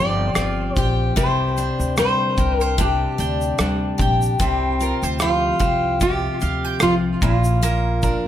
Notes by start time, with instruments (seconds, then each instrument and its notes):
Already playing: upright bass G1, steel-string acoustic guitar F3 C4 F4 G4 D5, mandolin G3 F4 C5 G5
0.35 upright bass G1, steel-string acoustic guitar C4, mandolin F4, cross-stick, shaker
0.76 upright bass A#1, steel-string acoustic guitar G4 C5, mandolin G5, kick, shaker
1.16 upright bass C2, steel-string acoustic guitar C3 G4 C5, mandolin G3, kick, shaker
1.57 steel-string acoustic guitar D4, mandolin C5, shaker
1.79 upright bass D2, shaker
1.97 steel-string acoustic guitar G3 C5, mandolin G5, cross-stick, shaker
2.38 upright bass C2, steel-string acoustic guitar G4, mandolin A#4, kick, shaker
2.59 steel-string acoustic guitar A#4, mandolin C5, shaker
2.78 steel-string acoustic guitar C3 G4, mandolin D4, kick, shaker
3.18 upright bass D2, steel-string acoustic guitar D4, mandolin G5, shaker
3.41 shaker
3.58 upright bass D2, steel-string acoustic guitar G3, mandolin D4, cross-stick, shaker
3.98 upright bass A#1, steel-string acoustic guitar G4, mandolin G5, kick, shaker
4.22 shaker
4.40 upright bass C2, steel-string acoustic guitar C3 C4 G4, mandolin G3, kick, shaker
4.81 steel-string acoustic guitar F4, mandolin A#4, shaker
5.03 upright bass D2, mandolin C5, shaker
5.20 steel-string acoustic guitar F3 F4, mandolin G5, cross-stick, shaker
5.59 upright bass C2, steel-string acoustic guitar G4, mandolin C5, kick, shaker
6.01 steel-string acoustic guitar C3 G4, mandolin F4, kick, shaker
6.41 upright bass D2, steel-string acoustic guitar F4, mandolin F5, shaker
6.65 mandolin G5
6.80 upright bass C2, steel-string acoustic guitar F3 F4, mandolin F4, cross-stick, shaker
7.22 upright bass A#1, steel-string acoustic guitar A#2 F4, mandolin A#3, kick, shaker
7.44 shaker
7.62 steel-string acoustic guitar A#2 A#4, mandolin A#3, shaker
8.03 steel-string acoustic guitar D4, mandolin A#4, kick, shaker